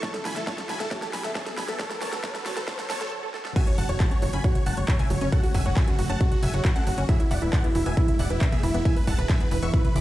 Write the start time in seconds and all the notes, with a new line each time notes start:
Already playing: riser
0.03 A4 C#5 A5, kick, snare, closed hi-hat
0.14 A4, snare, closed hi-hat
0.25 B1 G#5 A5 B5, snare, open hi-hat
0.36 A1 A4 E5, snare, closed hi-hat
0.47 A4 C#5 A5, kick, snare, closed hi-hat
0.58 A4, snare, closed hi-hat
0.69 B1 G#5 A5 B5, snare, open hi-hat
0.80 B1 A4 E5, snare, closed hi-hat
0.91 A4 C#5 A5, kick, snare, closed hi-hat
1.02 A4, snare, closed hi-hat
1.13 B1 G#5 A5 B5, snare, open hi-hat
1.24 B1 A4 E5, snare, closed hi-hat
1.35 A4 C#5 A5, kick, snare, closed hi-hat
1.46 A4, snare, closed hi-hat
1.57 B1 G#5 A5 B5, snare, open hi-hat
1.68 B1 A4 E5, snare, closed hi-hat
1.79 A4 C#5 A5, kick, snare, closed hi-hat, mid tom
1.90 A4, snare, closed hi-hat
2.01 B1 A4 C#5 A5, snare, open hi-hat
2.13 A1 A4, snare, closed hi-hat
2.24 A4 C#5 A5, kick, snare, closed hi-hat
2.35 A4, snare, closed hi-hat
2.45 B1 A4 C#5 A5, snare, open hi-hat
2.57 B1 A4, snare, closed hi-hat
2.68 A4 C#5 A5, kick, snare, closed hi-hat
2.79 A4, snare, closed hi-hat
2.90 B1 A4 C#5 A5, snare, open hi-hat
3.01 F#1 A4, snare, closed hi-hat
3.12 A4
3.23 A4
3.34 A4, snare
3.45 A4, snare
3.56 F#4 E5 G#5, kick, closed hi-hat, crash, impact
3.67 F#4 C#5, closed hi-hat
3.78 F#1 F#5 A5, open hi-hat
3.89 E1 C#5, closed hi-hat
4.00 E4 F#5 A5, kick, clap, closed hi-hat
4.11 C#4 C#5, closed hi-hat
4.22 F#1 F#4 C#5, open hi-hat
4.33 F#1 C#4 G#5 B5, closed hi-hat
4.44 F#4 C#5, kick, closed hi-hat
4.55 F#4 C#5, closed hi-hat, mid tom
4.66 F#1 F#5 A5, open hi-hat
4.77 F#1 C#5, closed hi-hat
4.88 E4 C#5, kick, clap, closed hi-hat
4.99 C#4 E5 G#5, closed hi-hat, mid tom
5.10 F#1 F#4 C#5, open hi-hat
5.21 F#1 C#4 C#5, closed hi-hat
5.32 F#4 A4 F#5, kick, closed hi-hat
5.43 F#4, open hi-hat
5.54 F#1 E5 F#5 G#5, kick, open hi-hat
5.65 E1 F#4 C#5, closed hi-hat
5.76 E4 E5 G#5, kick, clap, closed hi-hat
5.88 C#4 F#4, closed hi-hat
5.99 F#1 F#4, open hi-hat
6.10 F#1 C#4 F#5 A5, closed hi-hat
6.20 F#4, kick, closed hi-hat
6.32 F#4, closed hi-hat, mid tom
6.43 F#1 E5 F#5 G#5, open hi-hat, mid tom
6.54 F#1 F#4 C#5, closed hi-hat
6.65 E4 F#4, kick, clap, closed hi-hat
6.76 C#4 A4 F#5, closed hi-hat
6.87 F#1 F#4, open hi-hat
6.98 F#1 C#4 F#4, closed hi-hat
7.09 E4 G#4 E5, kick, closed hi-hat
7.20 E4, closed hi-hat
7.31 E1 D5 E5 F#5, open hi-hat
7.42 D1 E4 B4, closed hi-hat
7.53 D4 D5 F#5, kick, clap, closed hi-hat
7.64 B3 E4, closed hi-hat
7.75 E1 E4, open hi-hat
7.86 E1 B3 E5 G#5, closed hi-hat
7.97 E4, kick, closed hi-hat
8.08 E4, closed hi-hat, mid tom
8.19 E1 D5 E5 F#5, open hi-hat
8.30 E1 E4 B4, closed hi-hat
8.41 D4 E4, kick, clap, closed hi-hat
8.52 B3 G#4 E5, closed hi-hat, mid tom
8.63 E1 E4, open hi-hat
8.74 E1 B3 E4, closed hi-hat
8.85 E4 E5 G#5, kick, closed hi-hat
8.96 E4 B4, open hi-hat
9.07 E1 E5 F#5 A5, kick, open hi-hat
9.18 D1 B4, closed hi-hat
9.29 D4 E5 G#5, kick, clap, closed hi-hat
9.40 B3 B4, closed hi-hat
9.51 E1 E4 B4, open hi-hat
9.62 E1 B3 E5 C#6, closed hi-hat
9.73 E4 B4, kick, closed hi-hat
9.84 E4 B4, closed hi-hat, mid tom
9.95 E1 E4 B5 D6, open hi-hat, mid tom